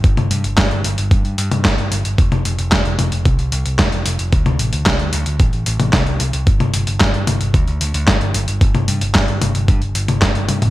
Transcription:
<<
  \new Staff \with { instrumentName = "Picked electric bass" } { \clef bass \time 4/4 \key g \dorian \tempo 4 = 112 g,,16 g,,16 g,16 g,,16 g,,16 g,,16 g,,16 g,,16 g,16 g,16 g,16 g,16 g,,16 g,,16 g,,16 g,,16 | f,,16 f,,16 f,,16 f,,16 f,,16 f,,16 f,,16 f,,16 c,16 c,16 c,16 c,16 f,,16 f,,16 f,,16 f,,16 | d,16 d,16 a,,16 d,16 c,16 d,16 d,16 d,16 a,,16 a,,16 a,,16 a,,16 c,16 c,16 c,16 c,16 | g,,16 g,,16 g,,16 g,,16 g,,16 g,,16 g,,16 g,,16 d,16 d,16 d,16 d,16 g,,16 g,,16 g,,16 g,,16 |
g,,16 g,,16 g,16 g,,16 g,,16 g,,16 g,,16 g,,16 g,16 g,,16 g,,16 g,,16 g,16 g,,16 g,16 g,,16 | }
  \new DrumStaff \with { instrumentName = "Drums" } \drummode { \time 4/4 <hh bd>16 <hh tommh>16 hh16 hh16 <hc hh bd sn>16 hh16 hh16 hh16 <hh bd>16 hh16 hh16 <hh tommh>16 <hc hh bd sn>16 hh16 hh16 hh16 | <hh bd>16 <hh tommh>16 hh16 hh16 <hc hh bd sn>16 hh16 <hh tommh>16 hh16 <hh bd>16 hh16 hh16 hh16 <hc hh bd sn>16 hh16 hh16 hh16 | <hh bd>16 <hh tommh>16 hh16 hh16 <hc hh bd sn>16 hh16 hh16 hh16 <hh bd>16 hh16 hh16 <hh tommh>16 <hc hh bd sn>16 hh16 hh16 hh16 | <hh bd>16 <hh tommh>16 hh16 hh16 <hc hh bd sn>16 hh16 <hh tommh>16 hh16 <hh bd>16 hh16 hh16 hh16 <hc hh bd sn>16 hh16 hh16 hh16 |
<hh bd>16 <hh tommh>16 hh16 hh16 <hc hh bd sn>16 hh16 <hh tommh>16 hh16 <hh bd>16 hh16 hh16 <hh tommh>16 <hc hh bd sn>16 hh16 <hh tommh>16 <hh toml>16 | }
>>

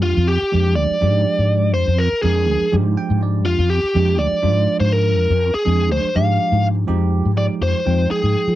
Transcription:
<<
  \new Staff \with { instrumentName = "Lead electric guitar" } { \time 7/8 \key f \dorian \tempo 4 = 123 f'8 g'4 d''2 | c''8 bes'8 aes'4 r4. | f'8 g'4 d''4~ d''16 c''16 bes'8~ | bes'8. aes'8. c''8 f''4 r8 |
r4 d''8 c''4 aes'4 | }
  \new Staff \with { instrumentName = "Tine electric piano" } { \time 7/8 \key f \dorian r2. r8 | r2 r8 g''8 d''8 | r2. r8 | r2. r8 |
r2. r8 | }
  \new Staff \with { instrumentName = "Tine electric piano" } { \time 7/8 \key f \dorian <f aes d' g'>16 r8. <f aes d' g'>4 <f aes d' g'>4.~ | <f aes d' g'>16 r8. <f aes d' bes'>4 <f aes d' g'>4.~ | <f aes d' g'>16 r8. <f aes d' g'>4 <f aes d' f'>4.~ | <f aes d' f'>16 r8. <f aes d' aes'>4 <f aes d' g'>4. |
<f aes ees' g'>4 <f aes ees' g'>4 <f aes ees' g''>4. | }
  \new Staff \with { instrumentName = "Fretless electric bass" } { \clef bass \time 7/8 \key f \dorian f,16 f,8 r16 f,8 d,16 r16 aes,8 r16 aes,8. | f,16 f,8 r16 f,8 d,16 r16 aes,8 r16 aes,8. | f,16 f,8 r16 f,8 d,16 r16 aes,8 r16 aes,8. | f,16 f,8 r16 f,8 d,16 r16 aes,8 r16 aes,8. |
f,8. aes,8 r16 f,16 r16 f,8 r16 aes,16 r16 f16 | }
>>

